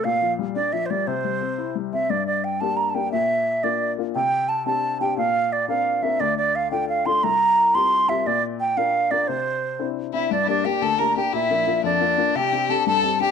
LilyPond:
<<
  \new Staff \with { instrumentName = "Flute" } { \time 6/8 \key c \mixolydian \tempo 4. = 117 f''4 r8 d''8 e''16. c''32 d''8 | c''2 r8 e''8 | d''8 d''8 g''8 a''8 bes''16. a''32 g''8 | e''4. d''4. |
g''4 a''8 a''4 g''8 | f''4 d''8 f''4 e''8 | d''8 d''8 f''8 g''8 f''8 c'''8 | bes''4. c'''4 e''8 |
d''8 r8 g''8 f''4 d''8 | c''2 r8 e''8 | d''8 d''8 g''8 a''8 bes''8 g''8 | e''4. d''4. |
g''4 a''8 a''4 g''8 | }
  \new Staff \with { instrumentName = "Fiddle" } { \time 6/8 \key c \mixolydian r2. | r2. | r2. | r2. |
r2. | r2. | r2. | r2. |
r2. | r2 r8 e'8 | d'16. e'32 d'8 g'8 a'8 bes'8 g'8 | e'4. d'4. |
g'4 a'8 a'4 g'8 | }
  \new Staff \with { instrumentName = "Upright piano" } { \time 6/8 \key c \mixolydian bes,8 f8 g8 d'8 f8 g8 | c8 g8 c'8 e'8 g8 c'8 | g,4. <bes d' g'>4 <bes d' g'>8 | bes,4. <bes d' f'>4 <bes d' f'>8 |
c4. <c' d' g'>4 <c' d' g'>8 | bes,4. <c' d' bes'>4 <c' d' bes'>8 | d,4. <d' f' a'>4 <d' f' a'>8 | c,4. <c' f' g'>4 <c' f' g'>8 |
bes,4. <d' f' bes'>4 <d' f' bes'>8 | c4. <c' d' e'>4 <c' d' e'>8 | g,8 <bes d' g'>8 <bes d' g'>8 d,8 <bes d' g'>8 <bes d' g'>8 | bes,8 <f bes d'>8 <bes d' f'>8 f,8 <bes d' f'>8 <bes d' f'>8 |
c8 <c' d' g'>8 <c' d' g'>8 g,8 <c' d' g'>8 <c' d' g'>8 | }
>>